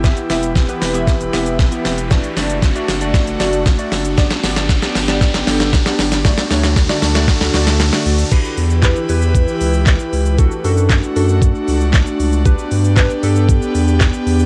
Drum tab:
CC |----------------|----------------|----------------|----------------|
HH |-xox-xox-xox-xox|-xox-xox-xox-xox|-xox-xox-xox-xox|-xox-xox-xox-xox|
SH |xxxxxxxxxxxxxxxx|xxxxxxxxxxxxxxxx|xxxxxxxxxxxxxxxx|xxxxxxxxxxxxxxxx|
CP |----------------|----------------|----------------|----------------|
SD |o-o-o-o-o-o-o-o-|o-o-o-o-o-o-o-o-|oooooooooooooooo|oooooooooooooo--|
BD |o---o---o---o---|o---o---o---o---|o---o---o---o---|o---o---o-------|

CC |x---------------|----------------|----------------|
HH |x-o-x-o-x-o-x-o-|x-o-x-o-x-o-x-o-|x-o-x-o-x-o-x-o-|
SH |xxxxxxxxxxxxxxxx|xxxxxxxxxxxxxxxx|xxxxxxxxxxxxxxxx|
CP |----x-------x---|----x-------x---|----x-------x---|
SD |----o-------o---|----o-------o---|----o-------o---|
BD |o---o---o---o---|o---o---o---o---|o---o---o---o---|